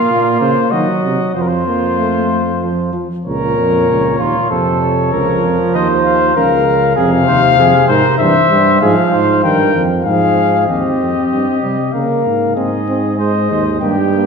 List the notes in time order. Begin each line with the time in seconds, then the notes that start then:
Already playing: A#3 F4 F5
0.11 A#2
0.41 C#3 C5
0.71 D#3 F#3 F#4 D#5
1.04 C3
1.35 F2 F3 F4 C5
1.42 A#4
1.48 C5
1.67 A#3
1.99 A3
2.63 F3
2.93 F3
3.25 C#2 A#2 A#4 C#5
3.58 F2
3.89 C#2
4.18 D#2 F4
4.50 F2 C3 A4 C5
4.82 C#5
5.12 C#2 F3 A#4
5.44 F2
5.74 D#2 C5 D#5
6.06 F5
6.36 C#2 C#3 A#4 F5
6.96 F2 C3 G#4 F5
7.28 D#2 C5
7.58 F2 G#4
7.88 G#2 A#4 C5
8.19 G2 E3 C5 E5
8.51 G2 G3
8.81 G#2 F3 G#4 F5
9.11 G#2 C5
9.43 G2 D#3 A#4 G5
9.75 F2 F3
10.04 G#2 F3 G#4 F5
10.67 D#2 C4 G4 D#5
11.00 F2
11.31 G2
11.63 C3 G3
11.93 C#3 A#3 A#4 F5
12.26 G#2
12.55 G#2 C4 G#4 D#5
12.88 C4
13.18 G#3 C5 D#5
13.50 D#2 C5
13.81 G2 A#3 G4 G5
14.12 A#3